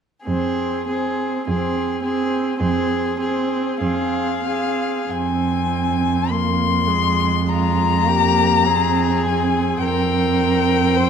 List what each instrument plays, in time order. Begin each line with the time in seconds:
0.25 cello F2, viola C4, violin G#4 C5
0.87 viola C4, violin G#4 C5
1.47 cello F2, viola C4, violin G#4 C5
2.03 viola C4, violin G#4 C5
2.59 cello F2, viola C4, violin G#4 C5
3.18 viola C4, violin G#4 C5
3.80 cello F2, viola C4, violin G#4 F5
4.45 viola C4, violin G#4
5.10 cello F2, viola C4, violin G#5
6.30 viola A#3, violin C6
6.87 viola G#3
7.47 viola G#3, violin F4 A#5
8.06 viola A#3, violin G4
8.66 viola C4, violin G#4
9.27 violin G#5
9.83 cello F2, violin A#4 G5
10.96 violin C5